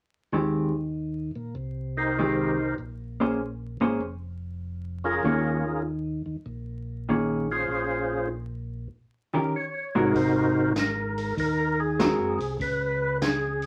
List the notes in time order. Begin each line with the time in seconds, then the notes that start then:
0.32 D#2 D#3 G#3 C4 G4
1.36 A#2
1.55 C2
1.97 D#4 G4 A#4 C5
2.19 D#3 G#3 C4 G4
2.78 A#1
3.20 A#3 C#4 G#4 C5
3.80 G#1 A#3 C#4 G#4 C5
4.01 F1
5.04 C#4 F4 G#4 A#4
5.23 D#2 D#3 A#3 C#4 G#4
6.26 D#2
6.46 A#1
7.09 D#3 A#3 C#4 G#4
7.51 C#4 F4 G#4 C5
7.68 A#1
9.34 D#3 C#4 G4 A#4
9.56 C#5
9.95 G#2 C3 G#3 C4 D#4 F#4 A#4
10.14 G#1 C5, kick, open hi-hat
10.76 A#4, snare, closed hi-hat
11.18 open hi-hat
11.37 D#2 A#4, kick, open hi-hat
11.80 G#4
11.99 G#3 C4 F#4 A#4, snare, closed hi-hat
12.19 F#2
12.39 C2, open hi-hat
12.59 C#2 B4, kick, open hi-hat
13.22 G#4, snare, closed hi-hat
13.62 open hi-hat